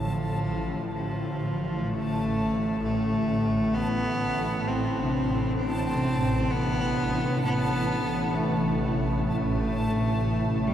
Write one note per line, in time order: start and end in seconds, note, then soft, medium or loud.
0.00 10.74 A1 medium
0.00 10.74 A2 medium
0.00 2.80 D3 medium
0.00 0.92 F3 medium
0.00 10.74 A5 medium
0.94 1.90 F3 medium
1.88 2.83 A3 loud
2.83 3.76 A3 loud
3.75 4.69 B3 loud
4.67 5.57 C4 medium
5.02 5.93 C3 medium
5.02 10.55 D4 medium
5.58 6.53 C4 loud
5.95 10.74 C3 medium
6.52 7.44 B3 loud
7.45 8.36 B3 loud
8.35 9.27 A3 medium
9.28 10.69 A3 loud
10.67 10.74 G3 medium